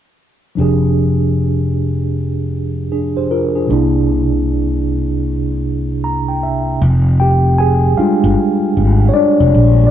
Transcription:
0.55 3.65 F1 medium
0.55 3.63 F3 medium
0.55 2.86 D4 medium
0.60 2.88 G4 medium
0.60 2.88 G#4 medium
2.92 3.15 D4 soft
2.92 3.14 G#4 soft
3.17 3.30 G4 soft
3.17 3.29 C5 medium
3.31 3.54 F4 medium
3.31 3.53 A#4 medium
3.55 3.70 D4 soft
3.55 3.92 G#4 medium
3.67 6.77 C2 medium
3.67 6.75 C3 medium
3.67 6.76 A#3 medium
3.71 6.77 D4 medium
3.71 6.78 E4 medium
6.04 6.26 A#5 medium
6.29 6.41 G5 medium
6.43 6.78 E5 medium
6.82 7.93 F1 loud
7.20 7.56 G4 medium
7.20 7.55 G5 medium
7.58 7.95 G#4 medium
7.58 7.98 G#5 loud
7.97 9.10 G3 medium
7.97 9.10 G#3 soft
7.97 9.11 D4 medium
7.97 8.72 F4 medium
7.97 8.71 F5 medium
7.97 muted fretless electric bass stroke soft
8.24 8.35 G1 medium
8.77 9.09 G#1 medium
9.09 9.14 C#5 medium
9.14 9.83 D4 medium
9.14 9.82 D5 loud
9.40 9.51 F1 medium
9.54 9.87 A#1 medium
9.87 9.91 D5 medium

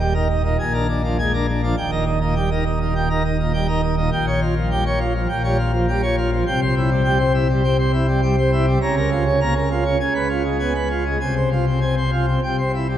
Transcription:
0.00 0.56 D#1 medium
0.00 0.56 D#2 medium
0.00 0.13 G3 medium
0.00 0.13 G5 medium
0.14 0.27 D#4 medium
0.14 0.28 A#4 medium
0.29 0.42 D#4 medium
0.44 0.57 A#2 medium
0.44 0.57 D#4 medium
0.59 1.74 A#1 medium
0.59 1.74 A#2 medium
0.59 0.72 G#5 medium
0.73 0.87 D4 medium
0.73 0.87 A#4 medium
0.89 1.02 D4 medium
1.04 1.17 F3 medium
1.04 1.17 D4 medium
1.19 1.32 G#3 medium
1.19 1.32 G#5 medium
1.34 1.46 D4 medium
1.34 1.47 A#4 medium
1.48 1.61 D4 medium
1.63 1.75 F3 medium
1.63 1.76 D4 medium
1.78 4.09 D#1 medium
1.78 4.09 D#2 medium
1.78 1.91 G5 loud
1.91 2.04 D#4 medium
1.91 2.05 A#4 medium
2.06 2.19 D#4 medium
2.21 2.34 A#2 medium
2.21 2.34 D#4 medium
2.36 2.49 G3 medium
2.36 2.49 G5 medium
2.51 2.64 D#4 medium
2.51 2.64 A#4 medium
2.66 2.79 D#4 medium
2.81 2.93 A#2 medium
2.81 2.94 D#4 medium
2.95 3.08 A#2 medium
2.95 3.08 G5 medium
3.10 3.22 D#4 medium
3.10 3.23 A#4 medium
3.24 3.37 D#4 medium
3.39 3.52 A#2 medium
3.39 3.52 D#4 medium
3.53 3.67 G3 medium
3.53 3.67 G5 medium
3.68 3.81 D#4 medium
3.68 3.81 A#4 medium
3.83 3.95 D#4 medium
3.97 4.10 A#2 medium
3.97 4.10 D#4 medium
4.12 5.27 A#1 medium
4.12 5.27 A#2 medium
4.12 4.25 G5 loud
4.27 4.40 C#5 medium
4.41 4.54 F4 medium
4.56 4.69 F3 medium
4.71 4.84 G3 medium
4.71 4.84 G5 medium
4.86 4.99 C#5 medium
5.00 5.13 F4 medium
5.15 5.28 F3 medium
5.29 6.43 A#1 medium
5.29 6.43 A#2 medium
5.29 5.42 G5 medium
5.44 5.57 G3 medium
5.44 5.57 C#5 medium
5.58 5.72 F4 medium
5.73 5.86 F3 medium
5.88 6.01 G3 medium
5.88 6.01 G5 medium
6.03 6.16 C#5 medium
6.17 6.30 F4 medium
6.32 6.45 F3 medium
6.47 8.78 C2 loud
6.47 8.78 C3 medium
6.47 6.60 G5 loud
6.62 6.75 C5 medium
6.77 6.89 E4 medium
6.91 7.03 G3 medium
7.05 7.18 G3 medium
7.05 7.18 G5 medium
7.19 7.32 C5 medium
7.34 7.47 E4 medium
7.49 7.62 G3 medium
7.64 7.77 C4 medium
7.64 7.77 G5 medium
7.79 7.92 C5 medium
7.93 8.06 E4 medium
8.08 8.21 G3 medium
8.22 8.36 G3 medium
8.22 8.36 G5 medium
8.38 8.51 C5 medium
8.52 8.66 E4 medium
8.67 8.79 G3 medium
8.81 9.96 C#2 medium
8.81 9.96 C#3 medium
8.81 8.95 A#5 loud
8.97 9.10 A#4 medium
9.11 9.24 F4 medium
9.26 9.39 C#4 medium
9.41 9.54 A#3 medium
9.41 9.54 A#5 medium
9.56 9.69 A#4 medium
9.71 9.84 F4 medium
9.85 9.98 C#4 medium
10.00 11.17 C#2 medium
10.00 11.17 C#3 medium
10.00 10.13 G#5 medium
10.15 10.28 B4 medium
10.29 10.43 F4 medium
10.44 10.58 G#3 medium
10.59 10.73 B3 medium
10.59 10.73 G#5 medium
10.75 10.88 B4 medium
10.91 11.04 F4 medium
11.06 11.18 G#3 medium
11.21 12.39 C2 medium
11.21 12.39 C3 medium
11.21 11.34 G#5 medium
11.36 11.50 C5 medium
11.52 11.65 F4 medium
11.67 11.80 C4 medium
11.81 11.95 C4 medium
11.81 11.95 G#5 medium
11.97 12.11 C5 medium
12.12 12.26 F4 medium
12.28 12.40 C4 medium
12.43 12.98 C2 medium
12.43 12.98 C3 medium
12.43 12.56 G5 medium
12.59 12.72 C5 medium
12.74 12.87 E4 medium
12.88 12.98 G3 medium

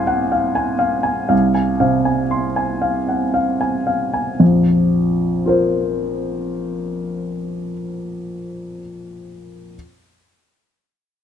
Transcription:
0.00 1.27 C2 medium
0.00 1.34 C5 soft
0.00 0.32 F5 soft
0.00 0.55 G#5 medium
0.00 1.34 C6 medium
0.07 0.33 F#5 soft
0.32 0.71 F5 soft
0.55 0.95 G#5 soft
0.79 1.20 F5 soft
1.03 1.45 G#5 soft
1.29 4.35 C2 soft
1.29 1.70 F5 soft
1.55 1.96 G#5 soft
1.80 2.61 C3 soft
1.80 2.21 F5 soft
2.05 2.46 G#5 soft
2.31 2.72 C6 soft
2.56 2.98 G#5 soft
2.82 3.23 F5 soft
3.09 3.34 F#5 soft
3.34 3.76 F5 soft
3.61 4.03 G#5 soft
3.87 4.30 F5 soft
4.14 4.40 G#5 soft
4.40 7.72 A#1 soft
4.40 7.72 F2 soft
5.46 8.78 F4 soft
5.46 8.80 A#4 soft
5.46 8.81 C5 soft

